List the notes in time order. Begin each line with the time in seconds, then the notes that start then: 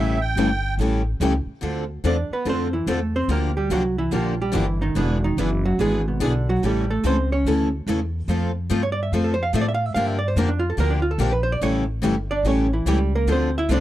Already playing: A1 C#3 E3 G3 A3 C#4 E4 G4 A4 E5
0.20 G5
0.36 G1 C#3 E3 G3 A3 C#4 E4 G4 A4
0.77 A1 C#3 E3 G3 A3 C#4 E4 A4
0.82 G4
1.20 C#2 C#3 E3 G3 A3 C#4 E4 G4 A4
1.46 muted upright bass stroke
1.62 D2 D3 F3 A3 C4 D4 F4 A4
2.04 E2 D3 F3 A3 C4 D4 F4 A4 D5
2.30 B3 B4, muted upright bass stroke
2.45 F2 D3 F3 A3 C4 D4 F4 A4
2.50 C5
2.73 E3 E4
2.87 E2 D3 F3 A3 C4 D4 F4 A4
2.91 A3
3.16 C4 C5
3.28 D2 D3 F3 A#3 D4 G4 A#4
3.32 A#3
3.57 G3 G4
3.70 C2 D3 F3 F#3 A#3 D4 F#4 G4
3.98 E3 E4
4.11 A#1 D3 F3 A#3 D4 F4 G4
4.41 G3 G4
4.54 G1 D3 E3 F3 A#3 D4 E4 G4
4.82 D#3 D#4
4.95 E1 D3 E3 B3 D4 G#4 B4
5.24 D#3 D#4
5.37 F#1 E3 B3 D4 E4 G#4 B4
5.65 F#3 F#4
5.78 G#1 E3 G#3 B3 D4 G#4 B4
6.08 B2 B3
6.20 B1 E3 B3 D4 G#4 B4
6.24 D3
6.49 F#3 F#4
6.62 A1 C#3 E3 G3 A3 C#4 E4 G4 A4
6.90 A3 A4
7.04 C#2 C#3 E3 A3 C4 C#4 E4 A4 C5
7.32 C#4 C#5
7.45 D2 C#3 E3 A3 C#4 E4 A4
7.87 E2 C#3 E3 A3 C#4 E4 A4
8.28 F2 F3 A3 C4 F4 A4
8.70 G2 F3 A3 C4 F4 A4
8.83 C#5
8.92 D5
9.03 E5
9.12 F2 F3 A3 C4 F4 A4 F5
9.24 A4
9.34 C5
9.43 F5
9.53 A2 F3 A3 C4 F4 A4 E5
9.61 D5
9.68 E5
9.74 F5
9.86 E5
9.94 G2 D3 F3 A#3 D4 G4 F5
10.07 E5
10.19 D5
10.28 C5
10.36 F2 D3 F3 A#3 D4 G4 A#4
10.48 D4
10.59 F4
10.70 A4
10.78 D2 D3 F3 A#3 D4 G4 A#4
10.90 D4
11.02 F4
11.11 A4
11.18 A#1 D3 F3 A#3 D4 G4 A#4
11.32 B4
11.43 C5
11.52 D5
11.61 A1 C#3 E3 G3 A3 C#4 E4 G4 A4 C#5
12.02 G1 C#3 E3 G3 A3 C#4 E4 G4 A4
12.31 D4 D5
12.43 A1 C#3 E3 G3 A3 C#4 E4 G4 A4
12.48 C#4 C#5
12.73 E3 E4
12.86 C#2 C#3 E3 G3 A3 C#4 E4 G4 A4
13.15 A#3 A#4
13.26 D2 D3 F3 A3 C4 D4 F4 A4
13.32 C4 C5
13.58 E4 E5
13.69 C2 D3 F3 A3 C4 D4 F4 A4
13.73 D4 D5